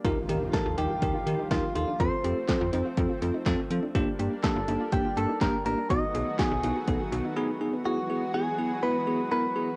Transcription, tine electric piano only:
0.05 D#4 G4 A#4
0.29 D#4 G4 A#4
0.53 D#4 G4 A#4
0.78 D#4 G4 A#4
1.02 D#4 G4 A#4
1.27 D#4 G4 A#4
1.51 D#4 G4 A#4
1.75 D#4 G4 A4
2.00 C4 F4 A4
2.24 C4 F4 A4
2.49 C4 F4 A4
2.73 C4 F4 C5
2.97 C4 F4 A4
3.22 C4 F4 A4
3.46 C4 F4 A4
3.71 C4 F4 A4
3.95 A#3 D4 G4
4.19 A#3 D4 G4
4.44 A#3 D4 G4
4.68 A#3 D4 G4
4.92 A#3 D4 G4
5.17 A#3 D4 G4
5.41 A#3 D4 G4
5.66 A#3 D4 G4
5.90 B3 D#4 F#4
6.14 B3 D#4 F#4
6.39 B3 D#4 F#4
6.63 B3 D#4 F#4
6.88 B3 D#4 A4
7.12 B3 D#4 F#4
7.36 B3 D#4 G#4 B5
7.61 B3 D#4 G#4
7.85 B3 E4 G#4
8.10 B3 E4 G#4
8.34 B3 E4 G#4
8.58 B3 E4 G#4
8.83 B3 E4 B4
9.07 B3 E4 G#4
9.32 B3 E4 A#4
9.56 B3 E4 G#4

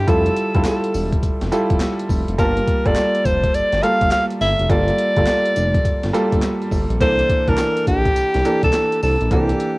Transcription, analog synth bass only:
0.08 F1
0.55 F1
0.95 E1
1.23 F1
1.42 F1
1.71 F1
2.10 F1
2.28 F1
2.39 G1
2.86 G1
3.26 F1
3.54 G1
3.73 G1
4.02 G1
4.41 G1
4.60 F1
4.70 G1
5.17 G1
5.57 F1
5.85 G1
6.04 G1
6.33 G1
6.72 G1
6.90 A#1
7.01 C2
7.48 C2
7.87 A#1
8.17 C2
8.35 C2
8.63 C2
9.03 C2
9.21 A#1
9.31 C2

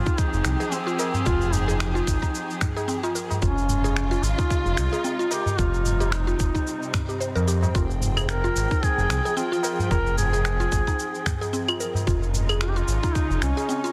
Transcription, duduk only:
Already playing: F4
0.19 D#4
0.73 C4
1.27 F4
1.53 D#4
3.42 C#4
4.23 F4
5.32 G4
5.59 F4
6.13 D#4
8.30 A#4
8.83 G#4
9.37 F4
9.91 A#4
10.18 G#4
12.62 F4
12.69 G4
12.77 F4
13.15 D#4
13.43 C#4

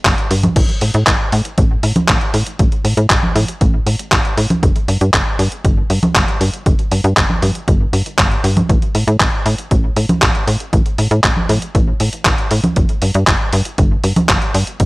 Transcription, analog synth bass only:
0.05 G1
0.31 G2
0.56 A1
0.82 A2
0.94 A2
1.07 A1
1.32 A2
1.58 A1
1.83 A2
2.09 A1
2.34 A2
2.59 A1
2.85 A2
2.97 A2
3.10 A1
3.35 A2
3.61 A1
3.86 A2
4.12 A1
4.37 A2
4.63 G1
4.88 G2
5.01 G2
5.14 G1
5.39 G2
5.65 G1
5.90 G2
6.15 G1
6.41 G2
6.66 G1
6.92 G2
7.04 G2
7.17 G1
7.42 G2
7.68 G1
7.93 G2
8.19 G1
8.44 G2
8.69 A1
8.95 A2
9.07 A2
9.20 A1
9.46 A2
9.71 A1
9.97 A2
10.22 A1
10.47 A2
10.73 A1
10.98 A2
11.11 A2
11.24 A1
11.49 A2
11.75 A1
12.00 A2
12.26 A1
12.51 A2
12.77 G1
13.02 G2
13.15 G2
13.27 G1
13.53 G2
13.78 G1
14.04 G2
14.29 G1
14.54 G2
14.80 G1

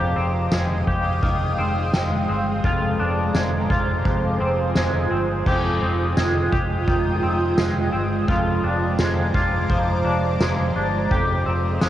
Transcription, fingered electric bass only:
Already playing: F1
0.17 F1
0.52 F1
0.88 F1
1.23 F1
1.58 F1
1.94 F1
2.29 G1
2.64 F1
2.99 F1
3.34 F1
3.70 F1
4.05 F1
4.41 F1
4.77 F1
5.11 G1
5.46 F1
5.82 F1
6.18 F1
6.52 F1
6.87 F1
7.23 F1
7.58 F1
7.94 G1
8.29 F1
8.64 F1
9.00 F1
9.35 F1
9.70 F1
10.05 F1
10.40 F1
10.76 G1
11.11 F1
11.46 F1
11.82 F1

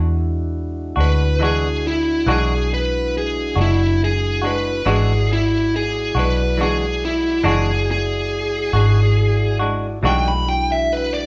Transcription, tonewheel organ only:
Already playing: G#3 D4 E4 F#4
4.85 G#3 E4 F#4 D5
10.01 A3 D#4 F4 G4
10.46 G#3 D4 E4 F#4

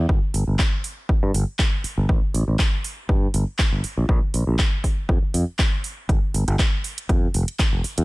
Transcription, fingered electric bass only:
0.09 G1
0.34 G1
0.47 G1
1.23 G2
1.34 G1
1.84 muted fingered electric bass stroke
1.98 G1
2.09 A1
2.34 A1
2.48 A1
3.09 G2
3.34 G1
3.72 G1
3.84 muted fingered electric bass stroke
3.97 A#1
4.09 A#1
4.34 A#1
4.47 A#1
5.09 F2
5.34 F2
6.09 G1
6.34 G1
6.48 G1
7.09 F2
7.35 F1
7.73 F1
7.84 muted fingered electric bass stroke
7.98 E2

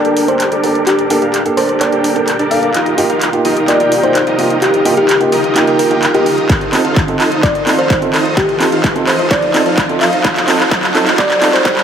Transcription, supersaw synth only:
0.05 D4 G4 A4 A#4 G5
0.52 D4 G4 A4 A#4 D5
0.87 D4 G4 A4 A#4 D5
1.22 D4 G4 A4 A#4 F5
1.57 D4 G4 A4 A#4 D5
1.92 D4 G4 A4 A#4 G5
2.39 D4 G4 A4 A#4 D5
2.75 D#4 F4 G4 A#4 D#5
3.10 D#4 F4 G4 A#4 F5
3.45 D#4 F4 G4 A#4 D#5
3.80 D#4 F4 G4 A#4 G5
4.27 D#4 F4 G4 A#4 D#5
4.62 D#4 F4 G4 A#4 D#5
4.97 D#4 F4 G4 A#4 F5
5.32 D#4 F4 G4 A#4 D#5
5.68 D#4 F4 G4 A#4 G5
6.14 D#4 F4 G4 A#4 D#5
6.50 D#4 F4 A4 C5 D#5
6.85 D#4 F4 A4 C5 F5
7.20 D#4 F4 A4 C5 D#5
7.43 D#4 F4 A4 C5 D#5
7.78 D#4 F4 A4 C5 F5
8.14 D#4 F4 A4 C5 D#5
8.37 D#4 F4 A4 C5 D#5
8.72 D#4 F4 A4 C5 F5
9.07 D#4 F4 A4 C5 D#5
9.31 D#4 F4 A4 C5 D#5
9.66 D#4 F4 A4 C5 F5
10.01 D#4 F4 A4 C5 D#5
10.25 D#4 F4 A4 C5 D#5
10.60 D#4 F4 A4 C5 F5
10.71 D#4 F4 A4 C5 D#5
11.07 D#4 F4 A4 C5 F5
11.18 D#4 F4 A4 C5 D#5
11.53 D#4 F4 A4 C5 F5
11.65 D#4 F4 A4 C5 D#5

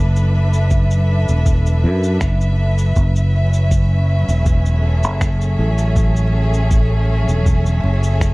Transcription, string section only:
Already playing: F#3 D4 A4 B4 E5
2.96 F#3
3.36 C#4
4.35 G#4
4.79 A4

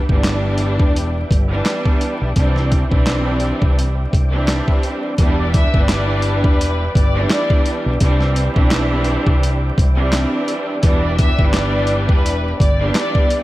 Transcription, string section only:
0.10 E3 G3 B3 D4
1.50 E3 G3 B3 D4
2.38 E3 G3 C4 D4
2.90 E3 G3 C4 D4
4.32 E3 G3 C4 D4
5.18 E3 G3 B3 D4
5.75 E3 G3 B3 D4
7.15 E3 G3 B3 D4
8.02 E3 G3 C4 D4
8.55 E3 G3 C4 D4
9.96 E3 G3 C4 D4
10.83 E3 G3 B3 D4
11.40 E3 G3 B3 D4
12.80 E3 G3 B3 D4

